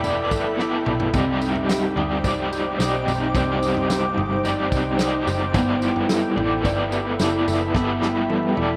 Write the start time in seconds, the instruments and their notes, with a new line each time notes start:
Already playing: picked electric bass E1, clean electric guitar B3 E4 A4, ambient pad A4 E5 G5 B5
0.03 overdriven electric guitar B3 E4 A4 D5, clean electric guitar D5, floor tom, tambourine
0.31 picked electric bass G1, clean electric guitar A4, kick, tambourine
0.58 overdriven electric guitar B3 E4 A4 D5, clean electric guitar E4, snare
0.86 picked electric bass B1, clean electric guitar A4, mid tom
1.00 floor tom
1.13 picked electric bass C2, overdriven electric guitar C3 G3 C4 D#4 G4 D5, clean electric guitar C4, ambient pad D#4 C5 G5 D6, kick, floor tom, tambourine
1.41 clean electric guitar D#4, tambourine
1.56 floor tom
1.69 clean electric guitar G4, snare, tambourine
1.96 picked electric bass D2, overdriven electric guitar C4 D#4 G4 D5, clean electric guitar D#4, floor tom
2.24 picked electric bass C2, overdriven electric guitar C4 D#4 G4 D5, clean electric guitar D5, kick, floor tom, tambourine
2.52 clean electric guitar G4, tambourine
2.78 picked electric bass B1, overdriven electric guitar C4 D#4 G4 D5, clean electric guitar D#4, snare, tambourine
3.06 picked electric bass B1, clean electric guitar G4, floor tom, tambourine
3.33 picked electric bass C2, overdriven electric guitar C3 G3 C4 D#4, clean electric guitar C4, kick, floor tom, tambourine
3.37 overdriven electric guitar G4 D5
3.61 clean electric guitar D#4, tambourine
3.77 floor tom
3.88 clean electric guitar G4, snare, tambourine
4.17 picked electric bass G1, clean electric guitar D#4, floor tom
4.43 overdriven electric guitar C4 D#4 G4 D5, clean electric guitar D5, floor tom, tambourine
4.72 picked electric bass C2, clean electric guitar G4, kick, tambourine
4.98 overdriven electric guitar C4 D#4 G4 D5, clean electric guitar D#4, snare, tambourine
5.27 picked electric bass F#1, clean electric guitar G4, floor tom, tambourine
5.53 picked electric bass G1, overdriven electric guitar G3 B3 E4 A4 D5, clean electric guitar B3, ambient pad A4 E5 B5, kick, floor tom, tambourine
5.82 clean electric guitar E4, tambourine
5.96 floor tom
6.09 clean electric guitar A4, snare, tambourine
6.36 picked electric bass A1, clean electric guitar E4, overdriven electric guitar E4 A4 D5, floor tom
6.63 picked electric bass G1, overdriven electric guitar B3 E4 A4 D5, clean electric guitar D5, kick, floor tom, tambourine
6.92 clean electric guitar G4, tambourine
7.06 clean electric guitar A4
7.19 picked electric bass F#1, overdriven electric guitar B3 E4 A4 D5, clean electric guitar E4, snare, tambourine
7.47 picked electric bass F#1, clean electric guitar A4, floor tom, tambourine
7.74 picked electric bass G1, overdriven electric guitar G3 B3 E4 A4 D5, clean electric guitar B3, kick, snare
8.01 clean electric guitar E4, snare
8.29 clean electric guitar A4, high tom
8.56 picked electric bass E1, clean electric guitar E4, overdriven electric guitar E4 A4 D5, high tom